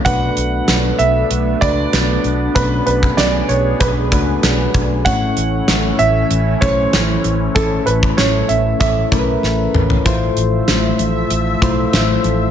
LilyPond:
<<
  \new Staff \with { instrumentName = "Grand piano" } { \time 4/4 \key b \dorian \tempo 4 = 96 fis''4. e''4 d''4. | b'8 b'8 d''8 cis''8 b'4. r8 | fis''4. e''4 cis''4. | a'8 b'8 cis''8 e''8 e''4. r8 |
r1 | }
  \new Staff \with { instrumentName = "Synth keys" } { \time 4/4 \key b \dorian <b, a d' fis' b'>4. r4 <a d' fis' b'>4 r8 | <b, a cis' d' fis' b'>4. r4 <a d' fis' b'>4 r8 | <a, a cis' e' cis''>4. r4 <a cis' e' c'' cis''>4 r8 | <a, a cis' e' a'>4. r4 <a cis' e' bes' b'>4 r8 |
<a, a e' f' c''>4. r4 <a e' f' c''>4 r8 | }
  \new Staff \with { instrumentName = "Analog synth pad" } { \time 4/4 \key b \dorian << { <b d'>1~ | <b d'>1 | <e cis'>1~ | <e cis'>1 |
<f e''>1 | } \\ { a1 | gis'1 | a1~ | a1~ |
a1 | } >> }
  \new Staff \with { instrumentName = "Fingered electric bass" } { \clef bass \time 4/4 \key b \dorian b,,8 b,,8 b,,8 b,,8 b,,8 cis,8 b,,8 b,,8 | b,,8 b,,8 b,,8 b,,8 b,,8 cis,8 b,,8 b,,8 | a,,8 a,,8 a,,8 a,,8 a,,8 b,,8 a,,8 a,,8 | a,,8 a,,8 a,,8 a,,8 a,,8 b,,8 a,,8 a,,8 |
a,,8 a,,8 a,,8 a,,8 a,,8 b,,8 a,,8 a,,8 | }
  \new DrumStaff \with { instrumentName = "Drums" } \drummode { \time 4/4 <hh bd>8 hh8 <hh sn>8 hh8 hh8 <hh bd>8 <hh sn>8 hh8 | <hh bd>8 hh16 bd16 <hh sn>8 hh8 <hh bd>8 <hh bd>8 <hh sn>8 <hh bd>8 | <hh bd>8 hh8 <hh sn>8 hh8 hh8 <hh bd>8 <hh sn>8 hh8 | <hh bd>8 hh16 bd16 <hh sn>8 hh8 <hh bd>8 <hh bd>8 sn8 toml16 tomfh16 |
<hh bd>8 hh8 <hh sn>8 hh8 hh8 <hh bd>8 <hh sn>8 hh8 | }
>>